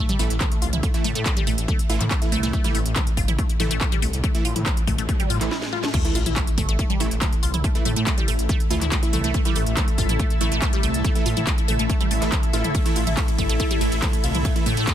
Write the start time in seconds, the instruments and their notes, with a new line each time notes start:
Already playing: synth drone A2 A3
0.09 synth arpeggio sound G3, closed hi-hat, mid tom
0.19 detuned saw bass A1, supersaw synth E3 A3 E4, synth arpeggio sound A3, open hi-hat
0.30 detuned saw bass A1, closed hi-hat
0.41 synth arpeggio sound A3, kick, clap, closed hi-hat, mid tom
0.52 closed hi-hat
0.62 detuned saw bass C2, synth arpeggio sound F4, open hi-hat
0.73 detuned saw bass C2, synth arpeggio sound E4, closed hi-hat, mid tom
0.83 synth arpeggio sound A3, kick, closed hi-hat
0.94 supersaw synth E3 A3 E4, closed hi-hat
1.04 detuned saw bass A2, synth arpeggio sound A3, mid tom, open hi-hat
1.15 detuned saw bass A2, synth arpeggio sound A3, closed hi-hat
1.26 synth arpeggio sound A3, kick, clap, closed hi-hat
1.37 synth arpeggio sound G3, closed hi-hat, mid tom
1.47 detuned saw bass A1, synth arpeggio sound A3, open hi-hat
1.58 detuned saw bass A1, closed hi-hat
1.68 synth arpeggio sound A3, kick, closed hi-hat, mid tom
1.79 closed hi-hat
1.90 detuned saw bass A1, supersaw synth E3 A3 E4, synth arpeggio sound F4, open hi-hat
2.01 detuned saw bass A2, synth arpeggio sound E4, clap, closed hi-hat, mid tom
2.11 synth arpeggio sound A3, kick, clap, closed hi-hat
2.22 supersaw synth E3 A3 E4, closed hi-hat
2.32 detuned saw bass C2, synth arpeggio sound A3, mid tom, open hi-hat
2.43 detuned saw bass C2, supersaw synth E3 A3 E4, synth arpeggio sound A3, closed hi-hat
2.53 synth arpeggio sound A3, kick, closed hi-hat, riser
2.64 supersaw synth E3 A3 E4, synth arpeggio sound G3, closed hi-hat, mid tom
2.75 detuned saw bass A1, synth arpeggio sound A3, open hi-hat
2.86 detuned saw bass A1, closed hi-hat
2.96 synth arpeggio sound A3, kick, clap, closed hi-hat, mid tom
3.07 closed hi-hat
3.17 detuned saw bass G1, synth arpeggio sound F4, kick, open hi-hat
3.28 detuned saw bass A1, synth arpeggio sound E4, closed hi-hat, mid tom
3.38 synth arpeggio sound A3, kick, closed hi-hat
3.50 closed hi-hat
3.60 detuned saw bass A1, supersaw synth E3 A3 E4, synth arpeggio sound A3, mid tom, open hi-hat
3.71 detuned saw bass A1, synth arpeggio sound A3, closed hi-hat
3.81 synth arpeggio sound A3, kick, clap, closed hi-hat
3.92 synth arpeggio sound G3, closed hi-hat, mid tom
4.02 detuned saw bass C2, synth arpeggio sound A3, open hi-hat
4.13 detuned saw bass C2, closed hi-hat
4.24 synth arpeggio sound A3, kick, closed hi-hat, mid tom
4.35 supersaw synth E3 A3 E4, closed hi-hat
4.45 detuned saw bass A2, synth arpeggio sound F4, open hi-hat
4.56 detuned saw bass A2, synth arpeggio sound E4, closed hi-hat, mid tom
4.66 synth arpeggio sound A3, kick, clap, closed hi-hat
4.77 closed hi-hat
4.87 detuned saw bass A1, synth arpeggio sound A3, kick, mid tom, open hi-hat
4.98 detuned saw bass A1, synth arpeggio sound A3, closed hi-hat
5.09 synth arpeggio sound A3, kick, closed hi-hat
5.20 synth arpeggio sound G3, closed hi-hat, mid tom
5.30 detuned saw bass A2, synth arpeggio sound F4, open hi-hat
5.41 detuned saw bass A1, supersaw synth E3 A3 E4, clap, closed hi-hat
5.51 synth arpeggio sound E4, snare
5.62 snare
5.73 synth arpeggio sound F4
5.84 synth arpeggio sound A3, snare
5.94 synth drone A2 A3, synth arpeggio sound A3, ambient pad E4, kick, closed hi-hat, mid tom, crash, sub drop
6.05 supersaw synth E3 A3 E4, ambient pad A4, closed hi-hat
6.15 detuned saw bass A1, synth arpeggio sound F4, open hi-hat
6.26 detuned saw bass A1, synth arpeggio sound E4, closed hi-hat, mid tom
6.36 synth arpeggio sound A3, kick, clap, closed hi-hat
6.47 closed hi-hat
6.53 ambient pad E5
6.58 detuned saw bass G1, synth arpeggio sound A3, kick, mid tom, open hi-hat
6.69 detuned saw bass A1, synth arpeggio sound A3, closed hi-hat
6.79 synth arpeggio sound A3, kick, closed hi-hat
6.90 synth arpeggio sound G3, closed hi-hat, mid tom
7.00 detuned saw bass A1, supersaw synth E3 A3 E4, synth arpeggio sound A3, open hi-hat
7.11 detuned saw bass A1, closed hi-hat
7.21 synth arpeggio sound A3, kick, clap, closed hi-hat, mid tom
7.33 closed hi-hat
7.43 detuned saw bass C2, synth arpeggio sound F4, open hi-hat
7.54 detuned saw bass C2, synth arpeggio sound E4, closed hi-hat, mid tom
7.64 synth arpeggio sound A3, kick, closed hi-hat
7.75 supersaw synth E3 A3 E4, closed hi-hat
7.85 detuned saw bass A2, synth arpeggio sound A3, mid tom, open hi-hat
7.96 detuned saw bass A2, synth arpeggio sound A3, closed hi-hat
8.07 synth arpeggio sound A3, kick, clap, closed hi-hat
8.18 synth arpeggio sound G3, closed hi-hat, mid tom
8.28 detuned saw bass A1, synth arpeggio sound A3, open hi-hat
8.39 detuned saw bass A1, closed hi-hat
8.49 synth arpeggio sound A3, kick, closed hi-hat, mid tom
8.60 closed hi-hat
8.70 detuned saw bass D2, supersaw synth E3 A3 E4, synth arpeggio sound F4, open hi-hat
8.81 detuned saw bass D2, synth arpeggio sound E4, clap, closed hi-hat, mid tom
8.92 synth arpeggio sound A3, kick, clap, closed hi-hat
9.03 supersaw synth E3 A3 E4, closed hi-hat
9.13 detuned saw bass C2, synth arpeggio sound A3, mid tom, open hi-hat
9.24 detuned saw bass C2, supersaw synth E3 A3 E4, synth arpeggio sound A3, closed hi-hat
9.34 synth arpeggio sound A3, kick, closed hi-hat
9.45 supersaw synth E3 A3 E4, synth arpeggio sound G3, closed hi-hat, mid tom
9.56 detuned saw bass A1, synth arpeggio sound A3, open hi-hat
9.67 detuned saw bass A1, closed hi-hat
9.77 synth arpeggio sound A3, kick, clap, closed hi-hat, mid tom
9.88 closed hi-hat
9.98 detuned saw bass G1, synth arpeggio sound F4, kick, open hi-hat
10.09 detuned saw bass A1, synth arpeggio sound E4, closed hi-hat, mid tom
10.19 synth arpeggio sound A3, kick, closed hi-hat
10.30 closed hi-hat
10.41 detuned saw bass A1, supersaw synth E3 A3 E4, synth arpeggio sound A3, mid tom, open hi-hat
10.52 detuned saw bass A1, synth arpeggio sound A3, closed hi-hat
10.62 synth arpeggio sound A3, kick, clap, closed hi-hat
10.73 synth arpeggio sound G3, closed hi-hat, mid tom
10.83 detuned saw bass C2, synth arpeggio sound A3, open hi-hat
10.94 detuned saw bass C2, closed hi-hat
11.04 synth arpeggio sound A3, kick, closed hi-hat, mid tom
11.15 supersaw synth E3 A3 E4, closed hi-hat
11.26 detuned saw bass A2, synth arpeggio sound F4, open hi-hat
11.37 detuned saw bass A2, synth arpeggio sound E4, closed hi-hat, mid tom
11.47 synth arpeggio sound A3, kick, clap, closed hi-hat
11.58 closed hi-hat
11.68 detuned saw bass A1, synth arpeggio sound A3, mid tom, open hi-hat
11.79 detuned saw bass A1, synth arpeggio sound A3, closed hi-hat
11.90 synth arpeggio sound A3, kick, closed hi-hat
12.01 synth arpeggio sound G3, closed hi-hat, mid tom
12.11 detuned saw bass A1, synth arpeggio sound A3, open hi-hat
12.22 detuned saw bass A1, supersaw synth E3 A3 E4, clap, closed hi-hat
12.32 synth arpeggio sound A3, kick, clap, closed hi-hat, mid tom
12.43 closed hi-hat
12.53 detuned saw bass A1, supersaw synth E3 A3 E4, synth arpeggio sound F4, open hi-hat
12.64 detuned saw bass A2, synth arpeggio sound E4, closed hi-hat, mid tom
12.75 synth arpeggio sound A3, kick, closed hi-hat, mid tom, ride
12.86 supersaw synth E3 A3 E4, closed hi-hat, ride
12.96 detuned saw bass A1, synth arpeggio sound F4, open hi-hat, ride
13.07 detuned saw bass A1, synth arpeggio sound E4, closed hi-hat, mid tom, ride
13.17 synth arpeggio sound A3, kick, clap, closed hi-hat, ride
13.28 closed hi-hat, ride
13.38 detuned saw bass G1, synth arpeggio sound A3, kick, mid tom, open hi-hat, ride
13.49 detuned saw bass A1, synth arpeggio sound A3, closed hi-hat, ride
13.60 synth arpeggio sound A3, kick, closed hi-hat, ride
13.71 synth arpeggio sound G3, closed hi-hat, mid tom, ride
13.81 detuned saw bass A1, supersaw synth E3 A3 E4, synth arpeggio sound A3, open hi-hat, ride
13.92 detuned saw bass A1, closed hi-hat, ride
14.02 synth arpeggio sound A3, kick, clap, closed hi-hat, mid tom, ride
14.13 closed hi-hat, ride
14.24 detuned saw bass C2, synth arpeggio sound F4, open hi-hat, ride
14.35 detuned saw bass C2, synth arpeggio sound E4, closed hi-hat, mid tom, ride
14.45 synth arpeggio sound A3, kick, closed hi-hat, ride
14.56 supersaw synth E3 A3 E4, closed hi-hat, ride
14.66 detuned saw bass A2, synth arpeggio sound A3, mid tom, open hi-hat, ride
14.77 detuned saw bass A2, synth arpeggio sound A3, closed hi-hat, ride
14.87 synth arpeggio sound A3, kick, clap, closed hi-hat, ride